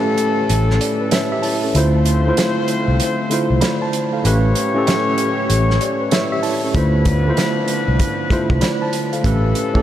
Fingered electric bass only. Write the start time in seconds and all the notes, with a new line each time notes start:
0.50 A1
1.75 D2
2.88 C2
3.50 C2
4.25 A1
5.50 A1
6.75 D2
7.88 C2
8.50 C2
9.25 A1